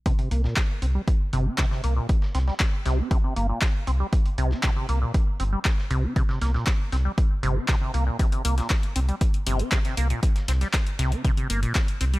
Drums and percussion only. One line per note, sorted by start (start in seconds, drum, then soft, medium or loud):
0.06 kick loud
0.06 closed hi-hat medium
0.19 closed hi-hat soft
0.31 closed hi-hat medium
0.44 snare soft
0.56 kick medium
0.56 snare loud
0.56 clap loud
0.56 closed hi-hat medium
0.82 closed hi-hat medium
1.08 kick loud
1.08 closed hi-hat medium
1.33 closed hi-hat medium
1.58 kick loud
1.58 snare loud
1.58 clap loud
1.58 closed hi-hat medium
1.71 snare soft
1.84 closed hi-hat medium
2.09 kick loud
2.09 closed hi-hat medium
2.22 snare soft
2.35 snare medium
2.35 closed hi-hat medium
2.48 snare soft
2.60 kick loud
2.60 snare loud
2.60 clap loud
2.60 closed hi-hat medium
2.86 snare medium
2.86 closed hi-hat medium
3.11 kick loud
3.11 closed hi-hat medium
3.36 closed hi-hat medium
3.61 kick loud
3.61 snare loud
3.61 clap loud
3.61 closed hi-hat medium
3.87 closed hi-hat medium
4.13 kick loud
4.13 closed hi-hat medium
4.26 closed hi-hat soft
4.38 closed hi-hat medium
4.51 snare soft
4.63 kick loud
4.63 snare loud
4.63 clap loud
4.63 closed hi-hat medium
4.89 closed hi-hat medium
5.14 kick loud
5.14 closed hi-hat medium
5.40 closed hi-hat medium
5.65 kick loud
5.65 snare loud
5.65 clap loud
5.65 closed hi-hat medium
5.78 snare soft
5.91 closed hi-hat medium
6.16 kick loud
6.16 closed hi-hat medium
6.29 snare soft
6.42 snare medium
6.42 closed hi-hat medium
6.54 snare soft
6.67 kick loud
6.67 snare loud
6.67 clap loud
6.67 closed hi-hat medium
6.92 snare soft
6.92 closed hi-hat medium
7.18 kick loud
7.18 closed hi-hat medium
7.43 closed hi-hat medium
7.68 kick loud
7.68 snare loud
7.68 clap loud
7.68 closed hi-hat medium
7.94 closed hi-hat medium
8.19 kick loud
8.19 closed hi-hat medium
8.32 closed hi-hat soft
8.45 closed hi-hat medium
8.45 open hi-hat loud
8.58 snare soft
8.58 closed hi-hat soft
8.70 kick loud
8.70 snare loud
8.70 clap loud
8.70 closed hi-hat medium
8.83 closed hi-hat soft
8.96 closed hi-hat medium
8.96 open hi-hat medium
9.09 closed hi-hat soft
9.21 kick loud
9.21 closed hi-hat medium
9.34 closed hi-hat soft
9.47 closed hi-hat medium
9.47 open hi-hat loud
9.59 closed hi-hat soft
9.72 kick loud
9.72 snare loud
9.72 clap loud
9.72 closed hi-hat medium
9.85 snare soft
9.85 closed hi-hat soft
9.97 closed hi-hat medium
9.97 open hi-hat loud
10.10 closed hi-hat soft
10.23 kick loud
10.23 closed hi-hat medium
10.36 snare soft
10.36 closed hi-hat soft
10.48 snare medium
10.48 closed hi-hat medium
10.48 open hi-hat medium
10.61 snare soft
10.61 closed hi-hat soft
10.73 kick medium
10.73 snare loud
10.73 clap loud
10.73 closed hi-hat medium
10.87 closed hi-hat soft
10.99 snare medium
10.99 closed hi-hat medium
10.99 open hi-hat medium
11.12 closed hi-hat soft
11.25 kick loud
11.25 closed hi-hat medium
11.37 closed hi-hat soft
11.50 closed hi-hat medium
11.50 open hi-hat loud
11.63 closed hi-hat soft
11.75 kick medium
11.75 snare loud
11.75 clap loud
11.75 closed hi-hat medium
11.88 closed hi-hat soft
12.01 closed hi-hat medium
12.01 open hi-hat medium
12.14 closed hi-hat soft